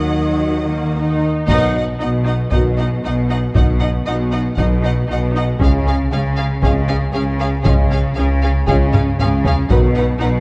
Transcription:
Already playing: D#2 D#3 F#3 D#4 D#5 F#5
0.71 A#3
0.97 D#4
1.48 B1 B2 D#3 F#3 B3 D#4 F#4 D#5 F#5, taiko
1.75 D#4 D#5 F#5
1.99 B1 B2 D#4 D#5 F#5
2.25 D#4 D#5 F#5
2.51 B1 B2 D#3 F#3 B3 D#4 F#4 D#5 F#5, taiko
2.78 D#4 D#5 F#5
3.03 B1 B2 D#4 D#5 F#5
3.30 D#4 D#5 F#5
3.54 B1 B2 D#3 F#3 B3 D#4 F#4 D#5 F#5, taiko
3.80 D#4 D#5 F#5
4.05 B1 B2 D#4 D#5 F#5
4.32 D#4 D#5 F#5
4.55 B1 B2 D#3 F#3 B3 D#4 F#4 D#5 F#5, taiko
4.83 D#4 D#5 F#5
5.08 B1 B2 D#4 D#5 F#5
5.33 D#4 D#5 F#5
5.59 C#2 C#3 G#3 C#4 F4 G#4 F5, taiko
5.86 C#4 G#4 F5
6.11 C#2 C#3 C#4 G#4 F5
6.37 C#4 G#4 F5
6.63 C#2 C#3 G#3 C#4 F4 G#4 F5, taiko
6.87 C#4 G#4 F5
7.13 C#2 C#3 C#4 G#4 F5
7.40 C#4 G#4 F5
7.64 C#2 C#3 G#3 C#4 F4 G#4 F5, taiko
7.90 C#4 G#4 F5
8.15 C#2 C#3 C#4 G#4 F5
8.42 C#4 G#4 F5
8.68 C#2 C#3 G#3 C#4 F4 G#4 F5, taiko
8.92 C#4 G#4 F5, taiko low-mid
9.19 C#2 C#3 C#4 G#4 F5, taiko low-mid
9.45 C#4 G#4 F5, taiko low
9.69 B1 B2 D#3 F#3 B3 D#4 F#4 B4 F#5, taiko
9.95 D#4 B4 F#5
10.20 B1 B2 D#4 B4 F#5

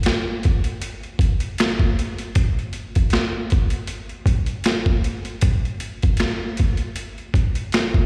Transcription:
0.03 finger snap, snare, closed hi-hat
0.43 kick, closed hi-hat
0.64 closed hi-hat
0.82 closed hi-hat
1.03 closed hi-hat
1.19 kick, closed hi-hat
1.40 closed hi-hat
1.58 finger snap, snare, closed hi-hat
1.79 kick
1.99 closed hi-hat
2.18 closed hi-hat
2.35 kick, closed hi-hat
2.59 closed hi-hat
2.73 closed hi-hat
2.95 kick, closed hi-hat
3.10 finger snap, snare, closed hi-hat
3.50 kick, closed hi-hat
3.70 closed hi-hat
3.87 closed hi-hat
4.09 closed hi-hat
4.26 kick, closed hi-hat
4.46 closed hi-hat
4.64 finger snap, snare, closed hi-hat
4.86 kick
5.04 closed hi-hat
5.25 closed hi-hat
5.41 kick, closed hi-hat
5.65 closed hi-hat
5.80 closed hi-hat
6.02 kick, closed hi-hat
6.17 finger snap, snare, closed hi-hat
6.57 kick, closed hi-hat
6.77 closed hi-hat
6.96 closed hi-hat
7.18 closed hi-hat
7.34 kick, closed hi-hat
7.55 closed hi-hat
7.72 finger snap, snare, closed hi-hat
7.94 kick

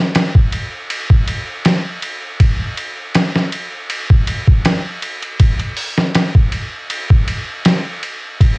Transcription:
0.15 snare, ride
0.35 kick
0.52 ride
0.90 ride
1.10 kick
1.28 ride
1.65 snare, ride
2.02 ride
2.40 kick, ride
2.77 ride
3.14 snare, ride
3.36 snare
3.52 ride
3.90 ride
4.10 kick
4.27 ride
4.48 kick
4.65 snare, ride
5.02 ride
5.23 ride
5.40 kick, ride
5.60 ride
5.77 open hi-hat
5.98 snare
6.15 snare, ride
6.35 kick
6.52 ride
6.90 ride
7.10 kick
7.28 ride
7.65 snare, ride
8.03 ride
8.40 kick, ride

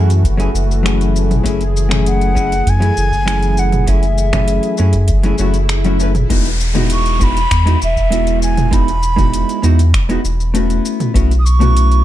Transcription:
Already playing: F#2 E3 A3 C#4 E4 F#4 G#4
0.10 closed hi-hat, shaker
0.24 F#1, kick, closed hi-hat, shaker
0.37 F#3 A3 C#4 E4 G#4, closed hi-hat, shaker
0.54 F#1, shaker
0.71 shaker
0.83 F#3 A3 C#4 E4 G#4, finger snap, closed hi-hat, shaker
1.01 closed hi-hat, shaker
1.16 G#4, shaker
1.31 closed hi-hat, mid tom, shaker
1.43 F#1 F#3 A3 C#4 E4 G#4, kick, closed hi-hat, shaker
1.61 closed hi-hat, shaker
1.77 shaker
1.89 F#3 A3 C#4 E4 G#4, finger snap, closed hi-hat, mid tom, shaker
2.06 F#5, closed hi-hat, shaker
2.21 closed hi-hat, shaker
2.35 F#3 A3 C#4 E4 G#4, kick, shaker
2.52 closed hi-hat, shaker
2.66 F#2 G#5, kick, closed hi-hat, shaker
2.80 F#3 A3 C#4 E4 G#4, closed hi-hat, shaker
2.97 F#1, shaker
3.12 kick, shaker
3.26 F#3 A3 C#4 E4 G#4, finger snap, closed hi-hat, shaker
3.43 closed hi-hat, shaker
3.58 F#5, shaker
3.72 closed hi-hat, mid tom, shaker
3.81 F#5
3.86 F#3 A3 C#4 E4 G#4 E5, kick, closed hi-hat, shaker
4.03 closed hi-hat, shaker
4.18 shaker
4.33 F#3 A3 C#4 E4 G#4, finger snap, kick, closed hi-hat, mid tom, shaker
4.48 closed hi-hat, shaker
4.63 closed hi-hat, shaker
4.78 F#2 F#3 A3 C#4 E4 G#4, shaker
4.93 kick, closed hi-hat, shaker
5.08 F#1, kick, closed hi-hat, swell, shaker
5.23 F#3 A3 C#4 E4 G#4, closed hi-hat, shaker
5.38 F#1 F#3 A3 C#4 E4 F#4, shaker
5.54 closed hi-hat, shaker
5.69 finger snap, closed hi-hat, shaker
5.84 F#3 A3 C#4 E4 F#4, closed hi-hat, shaker
5.99 F#3 A3 C#4 E4 B4, shaker
6.15 closed hi-hat, mid tom, shaker
6.30 E1 G#3 B3 D#4 E4 F#4, kick, closed hi-hat, downlifter, shaker
6.46 closed hi-hat, shaker
6.60 shaker
6.75 G#3 B3 D#4 E4 F#4, closed hi-hat, mid tom, shaker
6.90 C#6, closed hi-hat, shaker
7.06 closed hi-hat, shaker
7.19 G#3 B3 D#4 E4 F#4, kick, shaker
7.24 B5
7.37 closed hi-hat, shaker
7.51 E2, finger snap, kick, closed hi-hat, shaker
7.66 G#3 B3 D#4 E4 F#4, closed hi-hat, shaker
7.82 E1 E5, shaker
7.97 kick, shaker
8.10 G#3 B3 E4 F#4, closed hi-hat, shaker
8.27 closed hi-hat, shaker
8.43 G#5, shaker
8.57 closed hi-hat, mid tom, shaker
8.71 G#3 B3 D#4 E4 F#4 B5, kick, closed hi-hat, shaker
8.88 closed hi-hat, shaker
9.03 shaker
9.16 G#3 B3 D#4 E4 F#4, kick, closed hi-hat, mid tom, shaker
9.34 closed hi-hat, shaker
9.49 closed hi-hat, shaker
9.62 E2 G#3 B3 D#4 E4 F#4, shaker
9.79 closed hi-hat, shaker
9.93 E1, finger snap, kick, closed hi-hat, shaker
10.09 G#3 B3 D#4 E4 F#4, closed hi-hat, shaker
10.24 E1, shaker
10.40 shaker
10.54 A3 B3 C#4 E4 F#4, closed hi-hat, shaker
10.70 closed hi-hat, shaker
10.85 shaker
11.00 closed hi-hat, mid tom, shaker
11.14 B1 A3 B3 C#4 E4 F#4, kick, closed hi-hat, shaker
11.31 closed hi-hat, shaker
11.39 D#6
11.45 C#6, shaker
11.60 A3 B3 C#4 E4 F#4, closed hi-hat, mid tom, shaker
11.77 closed hi-hat, shaker
11.92 closed hi-hat, shaker

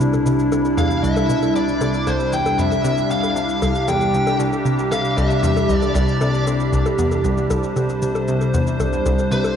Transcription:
Already playing: C2 C3 G3 D4 E4
0.00 C3, shaker
0.13 low bongo, shaker
0.26 C3, shaker
0.39 shaker
0.52 C2, low bongo, shaker
0.65 shaker
0.78 E2 F5, low bongo, shaker
0.91 shaker
1.04 C2 E5, shaker
1.17 low bongo, shaker
1.29 B2, shaker
1.43 low bongo, shaker
1.55 C3 D5, shaker
1.68 shaker
1.81 C3, low bongo, shaker
1.94 shaker
2.07 C2 C5, low bongo, shaker
2.20 shaker
2.33 E2 G5, shaker
2.46 low bongo, shaker
2.58 F2 E5, shaker
2.72 low bongo, shaker
2.84 C3, shaker
2.98 shaker
3.10 C3 G4 F5, shaker
3.23 low bongo, shaker
3.36 C3, shaker
3.49 shaker
3.62 C2, low bongo, shaker
3.75 shaker
3.88 E2 G5, low bongo, shaker
4.01 shaker
4.14 C2, shaker
4.27 low bongo, shaker
4.40 C2, shaker
4.53 low bongo, shaker
4.65 C3, shaker
4.79 shaker
4.91 C3 F5, low bongo, shaker
5.05 shaker
5.17 C2 E5, low bongo, shaker
5.31 shaker
5.43 E2, shaker
5.57 low bongo, shaker
5.69 C2, shaker
5.76 D5
5.82 low bongo, shaker
5.95 C2 D5, shaker
6.08 shaker
6.21 C3, low bongo, shaker
6.34 shaker
6.47 C3, low bongo, shaker
6.60 shaker
6.73 C2, shaker
6.86 low bongo, shaker
6.99 E2, shaker
7.11 low bongo, shaker
7.25 C2 C5, shaker
7.37 shaker
7.50 C2, low bongo, shaker
7.63 shaker
7.76 C3, low bongo, shaker
7.89 shaker
8.02 C3, shaker
8.15 low bongo, shaker
8.28 C2, shaker
8.41 low bongo, shaker
8.54 E2, shaker
8.67 shaker
8.80 C2, low bongo, shaker
8.93 shaker
9.06 C2, low bongo, shaker
9.19 shaker
9.31 C3 C5, shaker
9.44 low bongo, shaker

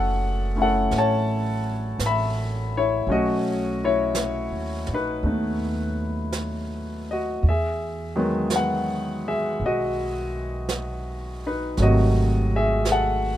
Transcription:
Already playing: F#1 E3 F#3 A3 C#4 G#4 A4 E5 F#5
0.55 A3 C#4 E4
0.62 A4 F#5
0.91 A1, brush sweep, snare
0.98 C#5 A5
1.99 A1, brush sweep, snare, hi-hat pedal
2.06 E5 B5
2.77 E4 C#5
3.07 B1 F#3 A3 C#4, brush sweep
3.12 F#4 D#5
3.84 E4 C#5
4.15 brush sweep, snare, hi-hat pedal
4.51 D#2
4.86 A#1, snare
4.93 D#4 B4
5.23 D#2 A3 B3 D#4, brush sweep
6.32 brush sweep, snare, hi-hat pedal
7.11 F#4 D#5
7.42 E2, brush sweep
7.49 G#4 E5
8.16 D#3 F#3 G#3 B3
8.50 brush sweep, snare, hi-hat pedal
8.56 B4 F#5
9.28 G#4 E5
9.60 B1, brush sweep
9.66 F#4 D#5
10.69 brush sweep, snare, hi-hat pedal
11.46 D#4 B4
11.77 G#1 C3 D#3 F#3 A3, brush sweep, snare
11.82 F#4 D#5
12.56 G#4 E5
12.85 brush sweep, snare, hi-hat pedal
12.91 A4 F#5

